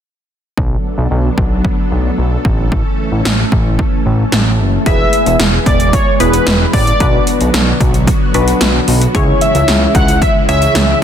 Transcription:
0.57 B1 F#3 B3 D4 A4, kick
0.98 B1
1.11 B1
1.38 B1, kick
1.65 kick
1.91 B1
2.18 B1
2.45 A1 E3 A3 C#4, kick
2.72 kick
3.12 A1
3.25 A1, snare
3.52 A1, kick
3.79 kick
4.06 A1
4.32 A1, snare
4.59 F#1
4.86 E1 E3 G#3 B3 E4 G#4 B4 E5, kick, closed hi-hat
5.13 closed hi-hat
5.26 E1, closed hi-hat
5.40 E1, snare, closed hi-hat
5.66 E1 D5, kick, closed hi-hat
5.80 closed hi-hat
5.93 C#5, kick, closed hi-hat
6.20 E1 B3 E4 G#4 B4, closed hi-hat
6.33 closed hi-hat
6.47 E1, snare, closed hi-hat
6.73 A1 D5, kick, open hi-hat
6.87 closed hi-hat
7.00 B1 D3 F#3 B3 D4 F#4 B4, kick, closed hi-hat
7.27 closed hi-hat
7.41 B1, closed hi-hat
7.54 B1, snare, closed hi-hat
7.81 B1, kick, closed hi-hat
7.94 closed hi-hat
8.07 kick, closed hi-hat
8.34 B1 B3 D4 F#4 B4, closed hi-hat
8.48 closed hi-hat
8.61 B1, snare, closed hi-hat
8.88 B1, open hi-hat
9.01 closed hi-hat
9.15 C#2 C#3 E3 G#3 C#4 E4 G#4 C#5, kick, closed hi-hat
9.41 E5, closed hi-hat
9.55 C#2, closed hi-hat
9.68 C#2, snare, closed hi-hat
9.95 C#2 F#5, kick, closed hi-hat
10.08 closed hi-hat
10.22 E5, kick, closed hi-hat
10.49 C#2 C#4 E4 G#4 C#5 E5, closed hi-hat
10.62 closed hi-hat
10.75 C#2, snare, closed hi-hat

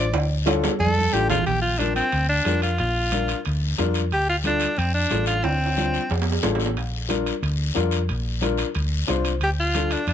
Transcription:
Already playing: A1 D5
0.14 D2, cowbell, high conga, high timbale, long guiro
0.46 D4 F4 A4, cowbell, high conga, high timbale, short guiro
0.64 high conga, low timbale, short guiro
0.80 F2 A4, cowbell, long guiro
0.87 high conga
0.98 high conga
1.13 A1 D4 F4 G4 A4, cowbell, short guiro
1.30 F4, low conga, low timbale, short guiro
1.42 low conga
1.46 A#1 G4, high conga, high timbale, long guiro
1.62 F4
1.79 D4 F4 A#4, high conga, high timbale, short guiro
1.96 C4, high timbale, short guiro
2.12 D2, high conga, high timbale, long guiro
2.29 D4
2.45 F2 D4 F4 A#4, high conga, high timbale, low timbale, short guiro
2.62 F4, high timbale, short guiro
2.78 A#1 F4, high timbale, long guiro
3.12 D4 F4 A#4, high conga, high timbale, short guiro
3.28 high timbale, short guiro
3.45 D2, high conga, high timbale, long guiro
3.78 F2 D4 F4 A#4, high conga, high timbale, low timbale, short guiro
3.94 high timbale, short guiro
4.11 D2 G4, high conga, high timbale, long guiro
4.29 F4
4.44 D4 F4 A4, high conga, high timbale, short guiro
4.60 high timbale, short guiro
4.77 F2 C4, high conga, high timbale, long guiro
4.94 D4
5.09 A1 D4 F4 A4, high conga, high timbale, low timbale, short guiro
5.26 F4, high timbale, short guiro
5.43 D2 C4, high conga, high timbale, long guiro
5.66 high timbale
5.77 D4 F4 C5, high conga, short guiro
5.94 short guiro
6.10 F2, high conga, low timbale, long guiro
6.22 low timbale
6.32 low timbale
6.43 A1 D4 F4 A4, high conga, low timbale, short guiro
6.55 low timbale
6.60 short guiro
6.66 low timbale
6.77 A#1, high conga, high timbale, long guiro
7.09 D4 F4 A#4, high conga, high timbale, short guiro
7.26 high timbale, short guiro
7.43 D2, high conga, high timbale, long guiro
7.74 F2 D4 F4 A#4, high conga, high timbale, low timbale, short guiro
7.91 high timbale, short guiro
8.09 A#1, high conga, high timbale, long guiro
8.41 D4 F4 A#4, high conga, high timbale, short guiro
8.58 high timbale, short guiro
8.75 D2, high conga, high timbale, long guiro
9.07 C2 D4 F4 C5, high conga, high timbale, low timbale, short guiro
9.25 high timbale, short guiro
9.41 D2 G4, high conga, high timbale, long guiro
9.60 F4
9.75 D4 F4 A4, high conga, high timbale, short guiro
9.91 D4, high timbale, short guiro
10.07 F2 D4, high conga, high timbale, long guiro

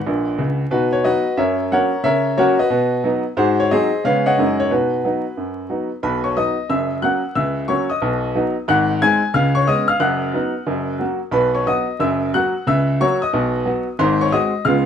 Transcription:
Already playing: B4 D#5 F#5
0.06 A#1 A#2
0.39 C#2 C#3
0.71 B2 D#4 F#4 B4
0.93 C#5
1.04 F#3 B3 D#4 F#4 B4 D#5
1.37 F#2 A#4 C#5 E5
1.72 F#3 A#3 C#4 A#4 C#5 F#5
2.04 C#3 A#4 C#5 E5
2.37 F#3 A#3 C#4 F#4 A#4 C#5
2.59 F#4 B4 D#5
2.70 B2
3.04 F#3 B3 D#4
3.37 G#2 F#4 G#4 C5
3.60 C#5
3.71 F#3 C4 D#4 G#4 C5 D#5
4.04 C#3 G#3 B3 C#4 B4 C#5 F5
4.26 C#5 D#5 F#5
4.38 F#2 G#3 A#3 D#4
4.60 C#5
4.71 B2 D#4 F#4 B4
5.04 F#3 B3 D#4
5.37 F#2
5.70 F#3 B3 D#4
6.03 B1 B2 B4 B5
6.24 C#5 C#6
6.36 F#3 B3 D#4 D#5 D#6
6.70 F#1 F#2 E5 E6
7.02 F#3 A#3 C#4 F#5 F#6
7.35 C#2 C#3 E5 E6
7.68 F#3 A#3 C#4 C#5 C#6
7.90 D#5 D#6
8.02 B1 B2
8.35 F#3 B3 D#4
8.68 G#1 G#2 F#5 F#6
9.02 G#3 C4 D#4 G#5 G#6
9.34 C#2 C#3 F5 F6
9.55 C#5 C#6
9.67 G#3 B3 C#4 D#5 D#6
9.88 F5 F6
10.00 F#1 F#2 F#5 F#6
10.33 F#3 B3 D#4
10.66 F#1 F#2
10.99 F#3 A#3 F#4
11.31 B1 B2 B4 B5
11.55 C#5 C#6
11.66 F#3 B3 F#4 D#5 D#6
12.00 F#1 F#2 E5 E6
12.34 F#3 A#3 F#4 F#5 F#6
12.67 C#2 C#3 E5 E6
13.00 F#3 A#3 F#4 C#5 C#6
13.22 D#5 D#6
13.33 B1 B2
13.66 F#3 B3 F#4
13.99 G#1 G#2 C5 C6
14.21 C#5 C#6
14.32 G#3 C4 F#4 D#5 D#6
14.65 C#2 C#3 G#3 B3 F4 F5 F6

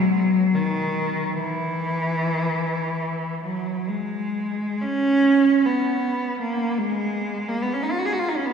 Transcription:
Already playing: F#3
0.54 D#3
1.33 E3
3.43 F#3
3.87 G#3
4.82 C#4
5.65 B3
6.40 A#3
6.78 G#3
7.48 A#3
7.62 B3
7.73 C#4
7.83 D#4
7.91 F4
7.98 F#4
8.05 G#4
8.13 F#4
8.19 F4
8.28 D#4
8.36 C#4
8.45 B3

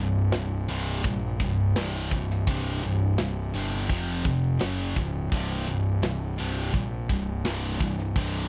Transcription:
Already playing: C1 C2 G2
0.32 C1 C2 G2, snare, ride
0.68 C1 C2 G2 C3, ride
1.04 A#1 C2 G2, kick, ride
1.40 C1 C2 G2, kick, ride
1.76 C1 C2 G2 C3, snare, ride
2.11 C1 C2 G2, kick, ride
2.30 snare
2.47 C1 C2 G2 C3, kick, ride
2.83 C1 C2 G2, ride
3.18 C1 C2 G2, snare, ride
3.54 G1 C2 G2 C3, ride
3.89 F1 F2 C3 F3, kick, ride
4.25 F1 F2 C3, kick, ride
4.60 F#1 F#2 C#3 F#3, snare, ride
4.96 C#1 F#2 C#3, kick, ride
5.32 C1 C2 G2 C3, kick, ride
5.67 C1 C2 G2, ride
6.03 C1 C2 G2, snare, ride
6.38 C1 C2 G2 C3, ride
6.74 A#1 C2 G2, kick, ride
7.09 C1 C2 G2, kick, ride
7.45 C1 C2 G2 C3, snare, ride
7.80 C1 C2 G2, kick, ride
7.98 snare
8.16 C1 C2 G2 C3, kick, ride

